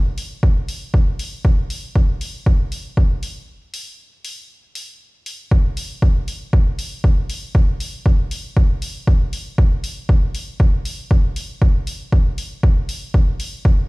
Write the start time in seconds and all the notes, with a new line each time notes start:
0.18 open hi-hat
0.43 kick
0.68 open hi-hat
0.94 kick
1.19 open hi-hat
1.45 kick
1.70 open hi-hat
1.96 kick
2.21 open hi-hat
2.46 kick
2.72 open hi-hat
2.97 kick
3.23 open hi-hat
3.74 open hi-hat
4.25 open hi-hat
4.75 open hi-hat
5.26 open hi-hat
5.51 kick
5.77 open hi-hat
6.02 kick
6.28 open hi-hat
6.53 kick
6.79 open hi-hat
7.04 kick
7.30 open hi-hat
7.55 kick
7.80 open hi-hat
8.06 kick
8.31 open hi-hat
8.57 kick
8.82 open hi-hat
9.07 kick
9.33 open hi-hat
9.58 kick
9.84 open hi-hat
10.09 kick
10.35 open hi-hat
10.60 kick
10.85 open hi-hat
11.11 kick
11.36 open hi-hat
11.62 kick
11.87 open hi-hat
12.12 kick
12.38 open hi-hat
12.63 kick
12.89 open hi-hat
13.14 kick
13.40 open hi-hat
13.65 kick